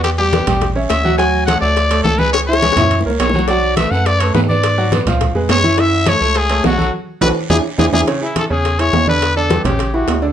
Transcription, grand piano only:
\new Staff \with { instrumentName = "Grand piano" } { \time 4/4 \key e \mixolydian \tempo 4 = 209 <b b' d''>8 <g g' g''>8 <b b' d''>8 <g g' g''>4 <cis' cis'' e''>4 <fis fis' fis''>8 | <fis fis' fis''>4 <a a' cis''>8 <a a' cis''>4 <a a' cis''>4 <gis gis' b'>8~ | <gis gis' b'>8 <e e' e''>8 <gis gis' b'>8 <e e' e''>4 <ais ais' cis''>4 <fis fis' fis''>8 | <fis fis' fis''>4 <a a' b'>8 <a a' b'>4 <a a' b'>4 <b b' d''>8~ |
<b b' d''>8 <fis fis' fis''>8 <b b' d''>8 <f f' f''>4 <gis gis' b'>4 <e e' e''>8 | <e e' e''>4 <a a' cis''>8 <a a' cis''>4 <a a' cis''>4 <fis fis' a'>8 | r4 <fis' a' b'>8 r8 <d' e' gis'>8 r8 <d' e' gis'>8 <d' e' gis'>8 | <cis cis' cis''>8 <e e' gis'>4 <cis cis' cis''>4 <e e' gis'>4 <d d' d''>8~ |
<d d' d''>8 <d d' d''>8 <g g' b'>8 <cis cis' cis''>4 <e e' g'>4 <d d' d''>8 | }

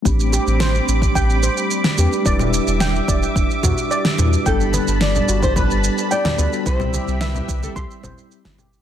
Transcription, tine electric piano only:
\new Staff \with { instrumentName = "Tine electric piano" } { \time 4/4 \key a \minor \tempo 4 = 109 <a c' d' g' b''>2.~ <a c' d' g' b''>8 <a c' d' g' b'>8 | <g d' e' b'>2.~ <g d' e' b'>8 <g d' e' fis' b'>8 | <g b d' a'>2.~ <g b d' a'>8 <g b d' fis' a'>8 | <g c' e' g'>2~ <g c' e' g'>8 <g c' e'>4. | }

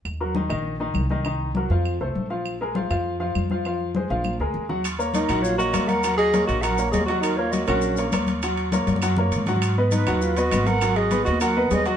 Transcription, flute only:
\new Staff \with { instrumentName = "Flute" } { \time 4/4 \key ees \minor \tempo 4 = 201 r1 | r1 | r1 | r1 |
r4 bes'4 des''8 ees''4 ges''8~ | ges''8 ees''4 ees''8 ges''4 ees''8 ees''8 | bes'8 des''8 ees''8 bes'4. r4 | r1 |
r4 ces''4 ces''8 ees''4 ges''8~ | ges''8 ees''4 ees''8 ges''4 ees''8 ees''8 | }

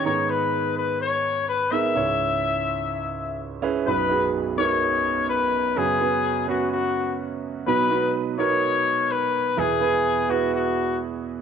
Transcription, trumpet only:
\new Staff \with { instrumentName = "Trumpet" } { \time 4/4 \key b \major \tempo 4 = 126 cis''8 b'4 b'8 cis''4 b'8 e''8~ | e''2. r4 | b'4 r8 cis''4. b'4 | gis'4. fis'8 fis'4 r4 |
b'4 r8 cis''4. b'4 | gis'4. fis'8 fis'4 r4 | }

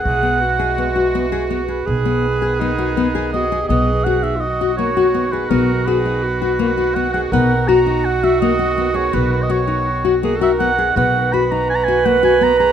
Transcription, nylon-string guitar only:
\new Staff \with { instrumentName = "Nylon-string guitar" } { \time 5/4 \key b \major \tempo 4 = 165 r8 b4 gis'8 b8 fis'8 b8 gis'8 b8 gis'8 | r8 b4 gis'8 b8 fis'8 b8 gis'8 b8 gis'8 | b4 fis'8 dis'4 fis'8 ais8 fis'8 b8 gis'8 | b4 fis'8 dis'4 fis'8 ais8 fis'8 b8 gis'8 |
b4 fis'8 dis'4 fis'8 ais8 fis'8 b8 gis'8 | b4 fis'8 dis'4 fis'8 ais8 fis'8 b8 gis'8 | b4 fis'8 dis'4 fis'8 ais8 fis'8 b8 gis'8 | }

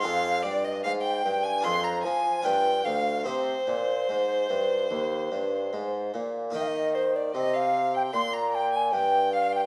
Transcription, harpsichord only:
<<
  \new Staff \with { instrumentName = "Harpsichord" } { \time 4/4 \key c \minor \tempo 4 = 75 <c' f' aes'>2 <d' f' aes'>4 <d' f' b'>4 | <c' ees' g'>1 | \key ees \major <bes ees' g'>1 | }
  \new Staff \with { instrumentName = "Harpsichord" } { \clef bass \time 4/4 \key c \minor f,8 g,8 aes,8 g,8 f,8 f8 g,8 d,8 | c8 bes,8 aes,8 g,8 ees,8 g,8 aes,8 bes,8 | \key ees \major ees4 c4 bes,4 g,4 | }
>>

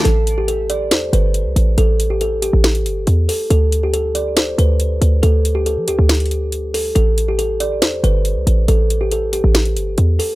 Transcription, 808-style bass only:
\new Staff \with { instrumentName = "808-style bass" } { \clef bass \time 4/4 \key a \minor \tempo 4 = 139 a,,2 e,8 g,,8. c,16 a,,8 | a,,4.~ a,,16 a,,8. g,,8 e,8 r8 | d,2~ d,8 d,4 d,8 | d,4~ d,16 f16 d,16 d,2~ d,16 |
a,,2 e,8 g,,8. c,16 a,,8 | a,,4.~ a,,16 a,,8. g,,8 e,8 r8 | }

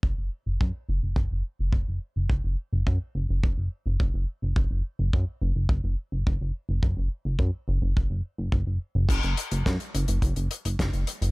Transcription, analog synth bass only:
\new Staff \with { instrumentName = "Analog synth bass" } { \clef bass \time 4/4 \key ges \lydian \tempo 4 = 106 ges,,16 ges,,16 r16 ges,,16 ges,16 r16 ges,,16 ges,,16 ges,,16 ges,,16 r16 ges,,16 ges,,16 ges,,16 r16 ges,,16 | ges,,16 ges,,16 r16 ges,,16 ges,16 r16 ges,,16 ges,,16 ges,,16 ges,,16 r16 ges,,16 ges,,16 ges,,16 r16 ges,,16 | ges,,16 ges,,16 r16 ges,,16 ges,16 r16 ges,,16 ges,,16 ges,,16 ges,,16 r16 ges,,16 ges,,16 ges,,16 r16 ges,,16 | ges,,16 ges,,16 r16 ges,,16 ges,16 r16 ges,,16 ges,,16 ges,,16 ges,,16 r16 ges,,16 ges,,16 ges,,16 r16 ges,,16 |
ges,,16 ges,,16 r16 ges,,16 ges,16 r16 ges,,16 ges,,16 ges,,16 ges,,16 r16 ges,,16 ges,,16 ges,,16 r16 ges,,16 | }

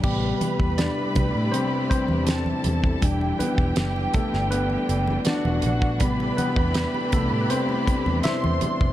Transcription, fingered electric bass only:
\new Staff \with { instrumentName = "Fingered electric bass" } { \clef bass \time 4/4 \key a \dorian \tempo 4 = 80 a,,8 r16 e,8 r16 c,16 a,16 r8. e,8. e,8 | e,,8 r16 e,,16 fis,,8 r16 g,,8. fis,,8 r16 e,,16 bes,,8 | a,,8 r16 e,8 r16 c,16 a,16 r8. e,16 r16 e,16 r16 f,,16 | }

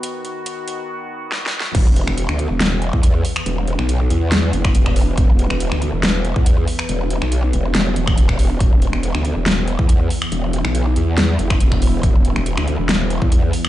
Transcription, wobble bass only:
\new Staff \with { instrumentName = "Wobble bass" } { \clef bass \time 4/4 \key b \phrygian \tempo 4 = 140 r1 | e,,8. e,,8 d,8 e,,4 e,8. r8 | e,,8. b,,8. e,4 fis,,8 e,,4 | e,,8. e,,8 d,8 e,,4 e,8. r8 |
e,,8. b,,8. e,,8 e,,8 e,,4. | e,,8. e,,8 d,8 e,,4 e,8. r8 | e,,8. b,,8. e,4 fis,,8 e,,4 | e,,8. e,,8 d,8 e,,4 e,8. r8 | }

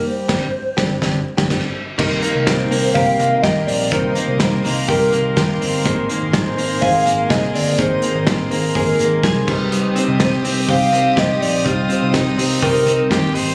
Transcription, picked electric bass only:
\new Staff \with { instrumentName = "Picked electric bass" } { \clef bass \time 4/4 \key c \minor \tempo 4 = 124 r8 g,,8 r8 g,,8 g,,8 r16 g,,16 g,,8 r8 | c,8 r16 c,16 c,8 c,8 c,8 c,8 ees,8 bes,,8 | c,8 r16 c,16 c,8 c,8 c,8 c,8 ees,8 g,,8 | aes,,8 r16 aes,,16 aes,,8 aes,,8 aes,,8 aes,,8 c,8 g,,8 |
aes,,8 r16 aes,,16 aes,,8 aes,,8 aes,,8 aes,,8 c,8 c,8~ | c,8 r16 c,16 c,8 c,8 c,8 c,8 c,8 bes,,8 | c,8 r16 c,16 c,8 c,8 c,8 c,8 ees,8 aes,,8 | }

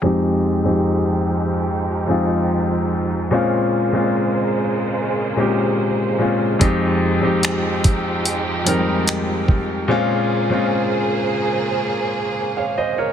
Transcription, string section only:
\new Staff \with { instrumentName = "String section" } { \time 4/4 \key f \minor \tempo 4 = 73 <f aes ees' g'>1 | <des aes bes c''>1 | <f aes ees' g'>1 | <des bes aes' c''>1 | }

